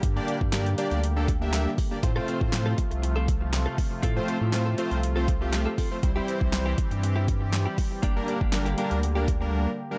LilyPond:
<<
  \new Staff \with { instrumentName = "Clean electric guitar" } { \time 4/4 \key g \dorian \tempo 4 = 120 r1 | r16 <c' f' a'>16 <c' f' a'>16 r8 <c' f' a'>16 r8. <c' f' a'>16 r8. <c' f' a'>16 r8 | <c' f' a'>16 r16 <c' f' a'>16 <c' f' a'>16 r16 <c' f' a'>16 <c' f' a'>16 r8 <c' f' a'>16 r8. <c' f' a'>16 <c' f' a'>16 r16 | r16 <c' e' g'>16 <c' e' g'>16 r8 <c' e' g'>16 r8. <c' e' g'>16 r8. <c' e' g'>16 r8 |
<bes d' g'>16 r16 <bes d' g'>16 <bes d' g'>16 r16 <bes d' g'>16 <bes d' g'>16 r8 <bes d' g'>16 r4. | }
  \new Staff \with { instrumentName = "Analog polysynth" } { \time 4/4 \key g \dorian r16 <bes d' g' d''>8 r16 <bes d' g' d''>16 r16 <bes d' g' d''>8 r16 <bes d' g' a'>16 r16 <bes d' g' e''>8 r8 <bes d' g' d''>16 | <a c' f' c''>16 <a c' f' c''>4~ <a c' f' c''>16 r2 r8 | r16 <a c' f' c''>8 r16 <a c' f' c''>16 r16 <a c' f' c''>8 r16 <a c' f' c''>16 r16 <a c' f' g'>8 r8 <a c' f' c''>16 | <g c' e' c''>16 <g c' e' c''>4~ <g c' e' c''>16 r2 r8 |
r16 <g bes d' bes'>8 r16 <g bes d' bes'>16 r16 <g bes d' bes'>8 r16 <g bes d' bes'>16 r16 <g bes d' bes'>8 r8 <g bes d' bes'>16 | }
  \new Staff \with { instrumentName = "Analog synth pad" } { \clef bass \time 4/4 \key g \dorian << { <g g'>1 | <f f'>1~ | <f f'>1 | <g g'>1~ |
<g g'>1 | } \\ { <d bes>1 | <c a>1~ | <c a>1 | <e c'>1 |
<d bes>1 | } >> }
  \new Staff \with { instrumentName = "Sub bass" } { \clef bass \time 4/4 \key g \dorian g,8 r16 g,4 d,2~ d,16 | a,8 r16 a,4 c,2~ c,16 | a,8 r16 a,4 c,2~ c,16 | c,8 r16 c,4 g,2~ g,16 |
g,,8 r16 g,,4 d,2~ d,16 | }
  \new DrumStaff \with { instrumentName = "Drums" } \drummode { \time 4/4 <hh bd>8 hh16 bd16 <hc hh sn>16 hh16 hh16 hh16 hh8 <hh bd>8 <hc hh sn>8 <hho bd>8 | <hh bd>8 hh16 bd16 <hc hh sn>8 <hh bd>16 hh16 hh8 <hh bd>8 <hc hh sn>8 <hho bd>8 | <hh bd>8 hh8 <hc hh sn>8 hh16 hh16 hh8 <hh bd>8 <hc hh sn>8 <hho bd>8 | <hh bd>8 hh16 bd16 <hc hh sn>8 <hh bd>16 hh16 hh8 <hh bd>8 <hc hh sn>8 <hho bd>8 |
<hh bd>8 hh16 bd16 <hc hh sn>16 hh16 hh16 hh16 hh8 <hh bd>8 r4 | }
>>